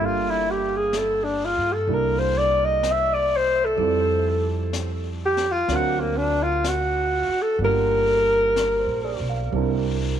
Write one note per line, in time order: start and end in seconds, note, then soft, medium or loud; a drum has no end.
0.00 1.53 G1 medium
0.00 1.86 G3 soft
0.00 1.86 A#3 soft
0.00 1.87 D4 soft
0.00 1.89 F4 soft
0.00 1.88 A4 soft
0.05 0.32 F4 medium
0.30 0.52 E4 medium
0.50 0.78 G4 medium
0.77 0.99 G#4 medium
0.93 brush sweep soft
0.93 snare soft
0.93 hi-hat pedal soft
0.98 1.25 A4 medium
1.24 1.47 D4 medium
1.45 1.74 F4 medium
1.57 1.85 G2 medium
1.72 1.95 A4 medium
1.87 3.74 C2 medium
1.87 3.75 G3 soft
1.87 3.78 A#3 soft
1.87 3.78 D4 soft
1.87 3.77 E4 soft
1.87 3.79 A4 soft
1.87 brush sweep soft
1.94 2.20 A#4 medium
2.18 2.39 C5 medium
2.38 2.66 D5 medium
2.65 2.93 D#5 medium
2.83 brush sweep soft
2.83 snare soft
2.83 hi-hat pedal medium
2.91 3.15 E5 medium
3.13 3.38 D5 medium
3.36 3.66 C5 medium
3.65 4.59 A4 medium
3.76 5.64 F2 medium
3.76 5.68 G3 soft
3.76 5.67 C4 soft
3.76 5.69 E4 soft
3.76 5.69 F4 soft
3.76 brush sweep soft
3.81 5.70 A4 soft
4.73 brush sweep soft
4.73 snare soft
4.73 hi-hat pedal soft
5.26 5.53 G4 medium
5.37 snare soft
5.51 5.76 F4 medium
5.68 7.25 D2 medium
5.68 7.60 F#3 soft
5.68 7.60 C4 soft
5.68 7.60 D4 soft
5.68 7.61 F5 soft
5.68 brush sweep soft
5.68 snare soft
5.72 6.01 F#4 medium
5.72 7.62 A#4 medium
6.00 6.19 A#3 medium
6.17 6.44 D4 medium
6.43 6.70 F4 medium
6.64 7.43 F#4 medium
6.64 brush sweep soft
6.64 snare soft
6.64 hi-hat pedal medium
7.28 muted upright bass stroke soft
7.42 7.59 A4 medium
7.59 8.83 G1 medium
7.59 9.50 G3 soft
7.59 9.53 A#3 soft
7.59 9.53 D4 soft
7.59 9.53 F4 soft
7.59 9.54 G4 soft
7.59 brush sweep soft
7.64 9.19 A#4 medium
8.56 9.02 A#4 soft
8.56 brush sweep soft
8.56 snare soft
8.56 hi-hat pedal soft
8.79 9.21 C5 soft
8.87 9.17 A#1 medium
9.05 9.34 D5 soft
9.20 9.50 B1 medium
9.29 9.63 F5 soft
9.51 10.20 C2 medium
9.51 10.20 G3 medium
9.51 10.20 C4 soft
9.51 10.20 D4 soft
9.51 brush sweep soft
9.56 10.20 E4 soft
9.56 10.20 A#4 medium